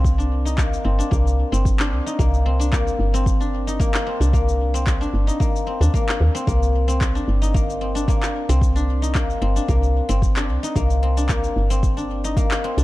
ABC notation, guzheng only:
X:1
M:4/4
L:1/16
Q:1/4=112
K:Cm
V:1 name="Guzheng"
z D2 E B,2 C D B, z2 C z D2 E | B,2 C D B, z2 C z D2 E B,2 C D | B, z2 C z D2 E B,2 C D B, z2 C | B, z2 C z D2 E B,2 C D B, z2 C |
z D2 E B,2 C D B, z2 C z D2 E | B,2 C D B, z2 C z D2 E B,2 C D |]